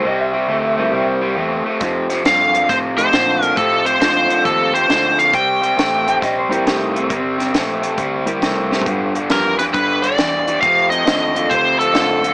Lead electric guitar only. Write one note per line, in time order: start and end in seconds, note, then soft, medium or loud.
2.26 2.71 F5 medium
2.69 2.77 C5 medium
2.98 3.44 C5 medium
3.44 3.57 A#4 medium
3.58 3.86 A4 medium
3.87 4.00 C5 medium
4.01 4.45 C5 medium
4.45 4.74 A4 medium
4.75 5.20 C5 medium
5.19 5.34 F5 medium
5.34 6.18 G5 medium
9.32 9.58 A#4 medium
9.59 9.64 B4 medium
9.73 10.04 B4 medium
10.02 10.58 D5 loud
10.61 10.90 F5 loud
10.90 11.52 D#5 medium
11.50 11.79 C5 medium
11.79 12.34 A4 medium